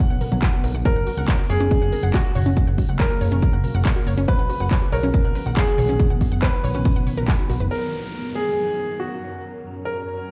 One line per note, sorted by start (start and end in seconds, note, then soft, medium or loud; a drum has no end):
0.00 0.82 D3 medium
0.00 0.81 F#3 medium
0.00 0.82 B3 medium
0.00 0.77 F#5 medium
0.10 0.19 B1 medium
0.10 0.14 F#5 medium
0.21 0.28 A#4 medium
0.21 open hi-hat loud
0.21 mid tom medium
0.32 0.40 B1 medium
0.32 0.39 F#3 loud
0.32 closed hi-hat medium
0.32 mid tom medium
0.42 0.49 F#4 medium
0.42 kick loud
0.42 clap loud
0.42 closed hi-hat medium
0.53 0.57 F#4 medium
0.53 closed hi-hat soft
0.64 0.72 B1 medium
0.64 0.68 A#4 medium
0.64 open hi-hat loud
0.74 0.83 B1 medium
0.74 0.85 F#5 medium
0.74 closed hi-hat soft
0.85 4.25 C#3 medium
0.85 7.67 F#3 medium
0.85 4.25 A#3 medium
0.85 0.92 F#4 medium
0.85 1.41 A#4 loud
0.85 kick loud
0.85 closed hi-hat medium
0.96 1.04 F#1 medium
0.96 1.00 F#5 medium
1.07 1.11 F#4 medium
1.07 open hi-hat loud
1.17 1.26 C#2 medium
1.17 1.24 F#5 loud
1.17 closed hi-hat soft
1.28 1.35 C#5 loud
1.28 kick loud
1.28 clap loud
1.28 closed hi-hat medium
1.39 1.46 F#4 medium
1.50 1.58 F#1 medium
1.50 2.05 G#4 medium
1.50 1.54 C#5 loud
1.50 open hi-hat loud
1.60 1.69 F#1 medium
1.60 1.67 C#4 loud
1.60 closed hi-hat soft
1.71 1.78 C#4 medium
1.71 kick loud
1.71 closed hi-hat medium
1.82 1.90 F#1 medium
1.82 1.86 F#5 medium
1.92 1.99 A#4 medium
1.92 open hi-hat loud
2.03 2.12 F#1 medium
2.03 2.10 F#5 loud
2.03 closed hi-hat medium
2.14 2.55 F#4 medium
2.14 2.21 C#5 loud
2.14 kick loud
2.14 clap loud
2.14 closed hi-hat medium
2.25 2.31 F#4 medium
2.25 closed hi-hat soft
2.35 2.44 F#1 medium
2.35 2.39 C#5 loud
2.35 open hi-hat loud
2.35 mid tom medium
2.46 2.55 F#1 medium
2.46 2.53 C#4 loud
2.46 closed hi-hat soft
2.46 mid tom medium
2.57 2.64 F#4 medium
2.57 kick loud
2.57 closed hi-hat medium
2.67 2.76 F#1 medium
2.67 2.72 F#5 medium
2.78 2.82 F#4 medium
2.78 kick medium
2.78 open hi-hat loud
2.89 2.97 C#2 medium
2.89 2.96 F#5 loud
2.89 closed hi-hat medium
3.00 4.20 A#4 medium
3.00 3.06 C#5 loud
3.00 kick loud
3.00 clap loud
3.00 closed hi-hat medium
3.10 3.17 F#4 medium
3.21 3.30 F#1 medium
3.21 3.25 C#5 loud
3.21 open hi-hat loud
3.32 3.40 F#1 medium
3.32 3.39 C#4 loud
3.32 closed hi-hat medium
3.32 mid tom medium
3.42 3.49 C#4 medium
3.42 kick loud
3.42 closed hi-hat medium
3.53 3.62 F#1 medium
3.53 3.57 F#5 medium
3.64 3.71 A#4 medium
3.64 open hi-hat loud
3.64 mid tom medium
3.75 3.83 F#1 medium
3.75 3.81 F#5 loud
3.75 closed hi-hat medium
3.75 mid tom medium
3.85 3.92 C#5 loud
3.85 kick loud
3.85 clap loud
3.85 closed hi-hat medium
3.96 4.03 F#4 medium
3.96 closed hi-hat soft
4.07 4.15 F#1 medium
4.07 4.11 C#5 loud
4.07 open hi-hat loud
4.17 4.26 F#1 medium
4.17 4.24 C#4 loud
4.17 closed hi-hat medium
4.28 7.68 D#3 medium
4.28 7.68 B3 medium
4.28 4.35 F#4 medium
4.28 4.84 B4 loud
4.28 kick loud
4.28 closed hi-hat medium
4.39 4.47 B1 medium
4.39 4.43 F#5 medium
4.50 4.54 F#4 medium
4.50 open hi-hat loud
4.60 4.69 F#1 medium
4.60 4.67 F#5 loud
4.60 closed hi-hat medium
4.71 4.78 C#5 loud
4.71 kick loud
4.71 clap loud
4.71 closed hi-hat medium
4.82 4.89 F#4 medium
4.92 5.01 B1 medium
4.92 5.48 A#4 medium
4.92 4.97 C#5 loud
4.92 open hi-hat loud
5.03 5.12 B1 medium
5.03 5.10 C#4 loud
5.03 closed hi-hat medium
5.14 5.21 C#4 medium
5.14 kick loud
5.14 closed hi-hat medium
5.25 5.33 B1 medium
5.25 5.29 F#5 medium
5.35 5.42 B4 medium
5.35 open hi-hat loud
5.46 5.55 B1 medium
5.46 5.53 F#5 loud
5.46 closed hi-hat medium
5.57 5.97 G#4 medium
5.57 5.63 C#5 loud
5.57 kick loud
5.57 clap loud
5.57 closed hi-hat medium
5.67 5.74 F#4 medium
5.67 closed hi-hat soft
5.78 5.87 B1 medium
5.78 5.82 C#5 loud
5.78 open hi-hat loud
5.78 mid tom medium
5.89 5.97 B1 medium
5.89 5.96 C#4 loud
5.89 closed hi-hat medium
5.89 mid tom medium
6.00 6.06 F#4 medium
6.00 kick loud
6.00 closed hi-hat medium
6.10 6.19 B1 medium
6.10 6.14 F#5 medium
6.10 closed hi-hat soft
6.21 6.25 F#4 medium
6.21 kick medium
6.21 open hi-hat loud
6.32 6.40 F#1 medium
6.32 6.38 F#5 loud
6.32 closed hi-hat medium
6.42 7.62 B4 medium
6.42 6.49 C#5 loud
6.42 kick loud
6.42 clap loud
6.42 closed hi-hat medium
6.53 6.60 F#4 medium
6.53 closed hi-hat soft
6.64 6.72 B1 medium
6.64 6.68 C#5 loud
6.64 open hi-hat loud
6.75 6.83 B1 medium
6.75 6.81 C#4 loud
6.75 closed hi-hat medium
6.75 mid tom medium
6.85 6.92 C#4 medium
6.85 kick loud
6.85 closed hi-hat medium
6.96 7.05 B1 medium
6.96 7.00 F#5 medium
6.96 closed hi-hat soft
7.07 7.11 C#5 medium
7.07 open hi-hat loud
7.07 mid tom medium
7.17 7.26 B1 medium
7.17 7.28 A#4 loud
7.17 closed hi-hat medium
7.17 mid tom medium
7.28 7.35 F#4 medium
7.28 kick loud
7.28 clap loud
7.28 closed hi-hat medium
7.39 7.43 F#4 medium
7.39 closed hi-hat soft
7.50 7.58 B1 medium
7.50 7.56 F#4 medium
7.50 open hi-hat loud
7.60 7.69 F#1 medium
7.60 7.67 B4 medium
7.60 closed hi-hat medium
7.71 10.31 F#2 medium
7.71 10.31 F#3 medium
7.71 10.31 C#4 medium
7.71 10.31 A#4 medium
7.71 8.27 A#4 medium
7.71 downlifter medium
8.35 8.91 G#4 medium
9.00 9.40 F#4 medium
9.85 10.31 A#4 medium